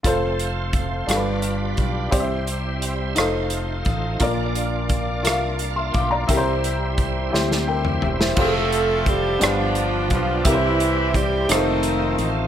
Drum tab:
CC |------------|------------|------------|------------|
HH |x-x-x-x-x-x-|x-x-x-x-x-x-|x-x-x-x-x-x-|x-x-x-------|
SD |------r-----|------r-----|------r-----|------oo---o|
T2 |------------|------------|------------|---------o--|
FT |------------|------------|------------|----------o-|
BD |o---o-----o-|o---------o-|o---o-----o-|o---o-------|

CC |x-----------|------------|
HH |--x-x-x-x-x-|x-x-x-x-x-x-|
SD |------r-----|------r-----|
T2 |------------|------------|
FT |------------|------------|
BD |o---o-----o-|o---o-------|